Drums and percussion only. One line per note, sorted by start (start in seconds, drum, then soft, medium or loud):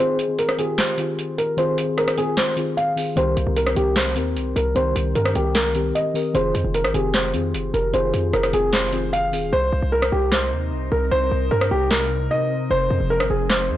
0.19 closed hi-hat loud
0.39 closed hi-hat medium
0.49 cross-stick medium
0.59 closed hi-hat medium
0.78 snare loud
0.78 clap medium
0.78 closed hi-hat medium
0.98 closed hi-hat medium
1.19 closed hi-hat medium
1.38 closed hi-hat medium
1.58 closed hi-hat medium
1.78 closed hi-hat medium
1.98 cross-stick medium
1.98 closed hi-hat soft
2.08 cross-stick loud
2.08 closed hi-hat medium
2.18 closed hi-hat medium
2.37 snare loud
2.37 clap medium
2.37 closed hi-hat medium
2.57 closed hi-hat medium
2.78 closed hi-hat medium
2.97 open hi-hat medium
3.17 closed hi-hat medium
3.37 closed hi-hat medium
3.56 closed hi-hat medium
3.67 cross-stick loud
3.76 closed hi-hat medium
3.96 snare loud
3.96 clap medium
3.96 closed hi-hat medium
4.16 closed hi-hat medium
4.37 closed hi-hat medium
4.56 closed hi-hat medium
4.76 closed hi-hat medium
4.96 closed hi-hat medium
5.15 closed hi-hat medium
5.25 cross-stick loud
5.35 closed hi-hat medium
5.55 snare loud
5.55 clap medium
5.55 closed hi-hat medium
5.75 closed hi-hat medium
5.95 closed hi-hat medium
6.15 open hi-hat medium
6.35 closed hi-hat medium
6.55 closed hi-hat medium
6.74 closed hi-hat medium
6.84 cross-stick loud
6.94 closed hi-hat medium
7.14 snare loud
7.14 clap medium
7.14 closed hi-hat medium
7.34 closed hi-hat medium
7.54 closed hi-hat medium
7.74 closed hi-hat medium
7.94 closed hi-hat medium
8.14 closed hi-hat medium
8.33 cross-stick medium
8.33 closed hi-hat soft
8.43 cross-stick loud
8.43 closed hi-hat medium
8.53 closed hi-hat medium
8.73 snare loud
8.73 clap medium
8.73 closed hi-hat medium
8.93 closed hi-hat medium
9.13 closed hi-hat medium
9.33 open hi-hat medium
10.02 cross-stick loud
10.32 snare loud
10.32 clap medium
11.61 cross-stick loud
11.91 snare loud
11.91 clap medium
13.20 cross-stick loud
13.50 snare loud
13.50 clap medium